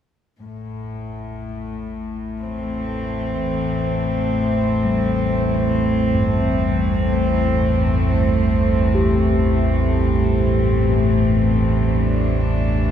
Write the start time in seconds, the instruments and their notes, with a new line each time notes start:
0.37 synth drone A1 E2, cello section A2
2.39 cello section E3 C4
2.60 cello section A3
4.85 singing bowl G3
6.15 singing bowl G2
8.95 singing bowl G4
11.88 cello section D4